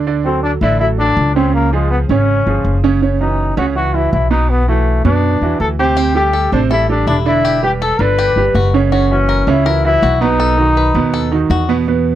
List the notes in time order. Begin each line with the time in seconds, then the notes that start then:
Already playing: D2
0.07 D3 D4 D5
0.25 F#3 C4 F#4 A4
0.43 D4
0.61 A1 D3 D4 E4 D5
0.80 F#3 E4 F#4 A4
0.99 F#3 D4 F#4 A4
1.17 C#2
1.35 C#3 C4 C#4 C#5
1.54 A#3
1.73 F3 G#3 F4 G#4
1.91 B3
2.09 G#1 C#3 C#4 C#5
2.47 G1 F3 F4 G#4
2.65 F#1
2.84 C#3 C#4 C#5
3.02 C#3 C#4 C#5
3.21 E3 C#4 D#4 F#4
3.57 C#2 C#3 C#4 F#4 C#5
3.75 E3 E4 F#4
3.94 E3 E4 F#4
4.13 B1 E4
4.31 B2 B3 D#4 B4
4.50 B3
4.68 E3 A3 E4 F#4
5.05 F#2 B2 B3 D4 B4
5.41 E2 E3 E4 F#4
5.60 D2 A4
5.79 C3 C4 G4 C5
5.97 C3 C4 G4 C5
6.15 G3 G4 A4
6.33 A4
6.52 A1 C3 C4 D4 C5
6.71 G3 E4 G4 A4
6.89 G3 D4 G4 A4
7.07 E1 D4 E4
7.26 D3 D4 E4 D5
7.45 G4
7.63 G3 G4 B4
7.82 A4
7.99 G1 D3 D4 B4 D5
8.19 G4
8.36 G1 G3 G4 B4
8.54 F#1 F#4
8.74 C#3 C#4 C#5
8.92 C#3 C#4 F#4 C#5
9.11 E3 C#4 E4 F#4
9.29 A#4
9.47 C#2 C#3 C#4 E4 C#5
9.66 E3 E4 F#4 A#4
9.84 E3 E4 F#4
10.02 B1 F#4
10.21 B2 B3 D#4 B4
10.40 A4
10.58 D#3 D#4 F#4
10.77 B4
10.94 D#2 B2 B3 B4
11.14 A4
11.32 D#3 D#4 F#4
11.50 E2 F#4
11.69 B2 B3 B4
11.88 B2 B3 B4